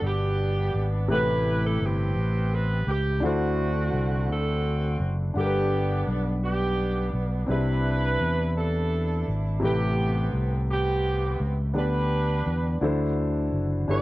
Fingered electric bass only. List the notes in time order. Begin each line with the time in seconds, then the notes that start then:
0.02 G1
0.74 G#1
1.09 A1
1.81 G1
2.16 A1
2.87 C#2
3.22 D2
3.93 C2
4.28 D2
5.00 F#1
5.35 G1
6.07 B1
7.13 B1
7.49 C2
8.20 E2
9.28 G#1
9.63 A1
10.33 C2
11.40 C#2
11.75 D2
12.46 E2
12.81 D2
13.52 F#1
13.89 G1